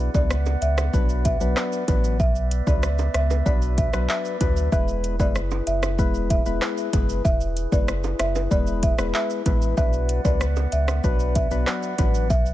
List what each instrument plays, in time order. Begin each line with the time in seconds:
Already playing: synth stab F#3 B3 D4 B4, glass harmonica B3 B4 D5 F#5
0.14 sub bass C#2, synth stab F#3 B3 D4 B4, marimba D5, kick, high bongo, shaker
0.30 cross-stick, shaker
0.46 high bongo, shaker
0.62 sub bass C#2, marimba E5, closed hi-hat, shaker
0.78 cross-stick, high bongo, shaker
0.93 sub bass B1, synth stab F#3 B3 D4 B4, kick, shaker
1.09 shaker
1.25 marimba E5, kick, closed hi-hat, shaker
1.40 sub bass B1, synth stab F#3 B3 D4 B4, shaker
1.57 cross-stick, clap, shaker
1.72 shaker
1.88 sub bass A1, synth stab F#3 B3 D4 B4, kick, closed hi-hat, low bongo, shaker
2.04 shaker
2.20 sub bass B1, glass harmonica E5, marimba E5, kick, shaker
2.36 shaker
2.51 closed hi-hat, shaker
2.67 sub bass C#2, synth stab F#3 B3 D4 B4, marimba D5, kick, high bongo, shaker
2.83 cross-stick, shaker
2.98 high bongo, shaker
3.14 sub bass C#2, marimba E5, cross-stick, closed hi-hat, shaker
3.30 marimba B4, high bongo, shaker
3.46 sub bass B1, synth stab F#3 B3 D4 B4, marimba D5, kick, shaker
3.62 shaker
3.77 marimba E5, kick, closed hi-hat, shaker
3.93 sub bass B1, synth stab F#3 B3 D4 B4, cross-stick, shaker
4.09 marimba E5, clap, shaker
4.25 shaker
4.41 sub bass D2, synth stab F#3 B3 D4 B4, kick, closed hi-hat, low bongo, shaker
4.57 shaker
4.72 sub bass E1, synth stab G#3 B3 E4 B4, glass harmonica E4 G#4 B4, marimba E5, kick, shaker
4.88 shaker
5.04 closed hi-hat, shaker
5.19 sub bass F#1, synth stab G#3 B3 E4 B4, marimba D5, kick, high bongo, shaker
5.35 cross-stick, shaker
5.51 high bongo, shaker
5.67 sub bass F#1, marimba E5, closed hi-hat, shaker
5.83 cross-stick, high bongo, shaker
5.98 sub bass E1, synth stab G#3 B3 E4 B4, kick, shaker
6.14 shaker
6.30 marimba E5, kick, closed hi-hat, shaker
6.46 sub bass E1, synth stab G#3 B3 E4 B4, shaker
6.62 cross-stick, clap, shaker
6.78 shaker
6.93 sub bass F#1, synth stab G#3 B3 E4 B4, kick, closed hi-hat, low bongo, shaker
7.09 shaker
7.25 sub bass E1, marimba E5, kick, shaker
7.41 shaker
7.57 closed hi-hat, shaker
7.72 sub bass F#1, synth stab G#3 B3 E4 B4, marimba D5, kick, high bongo, shaker
7.88 cross-stick, shaker
8.04 high bongo, shaker
8.19 sub bass F#1, marimba E5, cross-stick, closed hi-hat, shaker
8.35 marimba B4, high bongo, shaker
8.51 sub bass E1, synth stab G#3 B3 E4 B4, marimba D5, kick, shaker
8.67 shaker
8.83 marimba E5, kick, closed hi-hat, shaker
8.98 sub bass E1, synth stab G#3 B3 E4 B4, cross-stick, shaker
9.14 marimba E5, clap, shaker
9.30 shaker
9.46 sub bass A1, synth stab G#3 B3 E4 B4, kick, closed hi-hat, low bongo, shaker
9.62 shaker
9.77 sub bass B1, synth stab F#3 B3 D4 B4, glass harmonica B3 D5 F#5, marimba E5, kick, shaker
9.93 shaker
10.09 closed hi-hat, shaker
10.25 sub bass C#2, synth stab F#3 B3 D4 B4, marimba D5, kick, high bongo, shaker
10.41 cross-stick, shaker
10.56 high bongo, shaker
10.72 sub bass C#2, marimba E5, closed hi-hat, shaker
10.88 cross-stick, high bongo, shaker
11.04 sub bass B1, synth stab F#3 B3 D4 B4, kick, shaker
11.20 shaker
11.35 marimba E5, kick, closed hi-hat, shaker
11.51 sub bass B1, synth stab F#3 B3 D4 B4, shaker
11.67 cross-stick, clap, shaker
11.83 shaker
11.98 sub bass A1, synth stab F#3 B3 D4 B4, kick, closed hi-hat, low bongo, shaker
12.14 shaker
12.30 sub bass B1, marimba E5, kick, shaker
12.46 shaker